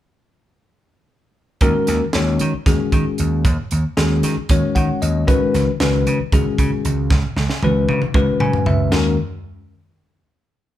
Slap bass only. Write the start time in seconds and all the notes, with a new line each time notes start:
1.61 D#2
1.88 D#2
2.14 D#2
2.41 D#3
2.54 muted slap bass stroke
2.66 D#2
2.92 D#3
3.07 muted slap bass stroke
3.19 D#2
3.45 D#2
3.72 D#2
3.97 D#2
4.23 D#3
4.37 muted slap bass stroke
4.50 D#2
4.76 D#3
4.88 muted slap bass stroke
5.02 D#2
5.28 C#2
5.54 C#2
5.80 C#2
6.06 C#3
6.20 muted slap bass stroke
6.33 C#2
6.58 C#3
6.73 muted slap bass stroke
6.85 C#2
7.10 C#2
7.36 C#2
7.62 C#2
7.88 C#3
8.02 muted slap bass stroke
8.14 C#2
8.40 C#3
8.53 muted slap bass stroke
8.66 C#2
8.92 D#2